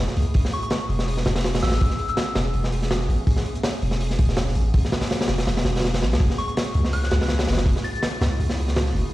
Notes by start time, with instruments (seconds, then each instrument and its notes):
Already playing: ambient pad A3 E4 F#4 G#4
0.07 snare
0.17 808-style bass C#2, open hi-hat
0.34 808-style bass A1, ambient pad B3 C#4, kick, open hi-hat
0.45 snare
0.52 synth bell C#6, open hi-hat
0.63 synth bell C#6, closed hi-hat
0.70 snare, open hi-hat
0.89 808-style bass E1, open hi-hat
0.99 snare
1.08 open hi-hat
1.17 snare
1.25 808-style bass E1, snare, open hi-hat
1.35 snare, open hi-hat
1.44 snare, open hi-hat
1.54 snare, open hi-hat
1.62 808-style bass A1, synth bell E6, snare, open hi-hat
1.67 snare, open hi-hat
1.72 snare, open hi-hat
1.80 808-style bass A1, kick, open hi-hat
1.90 snare
1.99 open hi-hat
2.08 synth bell E6, closed hi-hat
2.17 snare, open hi-hat
2.35 808-style bass E1, snare, open hi-hat
2.54 808-style bass E1, open hi-hat
2.64 snare
2.72 open hi-hat
2.82 snare
2.91 snare, open hi-hat
3.01 snare
3.09 808-style bass A1, open hi-hat
3.27 808-style bass A1, kick, open hi-hat
3.36 snare
3.46 open hi-hat
3.55 closed hi-hat
3.63 snare, open hi-hat
3.82 808-style bass E1, open hi-hat
3.91 snare
4.00 open hi-hat
4.11 snare
4.19 808-style bass E1, kick, open hi-hat
4.29 snare
4.37 snare, open hi-hat
4.48 snare
4.55 808-style bass A1, open hi-hat
4.74 808-style bass A1, kick, open hi-hat
4.85 snare
4.92 snare, open hi-hat
5.01 snare, open hi-hat
5.10 snare, open hi-hat
5.20 snare, open hi-hat
5.28 808-style bass E1, snare, open hi-hat
5.38 snare, open hi-hat
5.47 808-style bass E1, snare, open hi-hat
5.57 snare, open hi-hat
5.65 808-style bass E1, snare, open hi-hat
5.76 snare, open hi-hat
5.79 snare, open hi-hat
5.84 snare, open hi-hat
5.94 snare, open hi-hat
6.01 808-style bass A1, snare, open hi-hat
6.11 808-style bass C#2, snare, open hi-hat
6.20 808-style bass F#1, ambient pad A3 E4 F#4 G#4, kick, open hi-hat
6.30 snare
6.38 synth bell C#6, open hi-hat
6.48 synth bell C#6, closed hi-hat
6.57 snare, open hi-hat
6.74 808-style bass C#2, open hi-hat
6.85 snare
6.93 synth bell F#6, open hi-hat
7.03 snare
7.11 808-style bass C#2, snare, open hi-hat
7.21 snare, open hi-hat
7.28 snare, open hi-hat
7.39 snare, open hi-hat
7.48 808-style bass F#1, snare, open hi-hat
7.53 snare, open hi-hat
7.57 snare, open hi-hat
7.66 808-style bass F#1, kick, open hi-hat
7.76 snare
7.84 synth bell A6, open hi-hat
7.95 closed hi-hat
8.03 snare, open hi-hat
8.21 808-style bass C#2, snare, open hi-hat
8.39 808-style bass C#2, open hi-hat
8.50 snare
8.57 open hi-hat
8.68 snare
8.76 snare, open hi-hat
8.86 snare
8.95 808-style bass F#1, open hi-hat